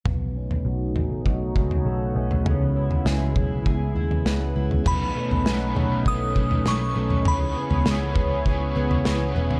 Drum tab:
CC |----------------|----------------|x---------------|----------------|
SD |----------------|----o-------o---|----o-------o---|----o-------o---|
FT |o--o--o----o---o|o--o--o----o---o|o--o--o----o---o|o--o--o----o---o|
BD |o-------o-o-----|------o-o-------|o-------o-o-----|------o-o-------|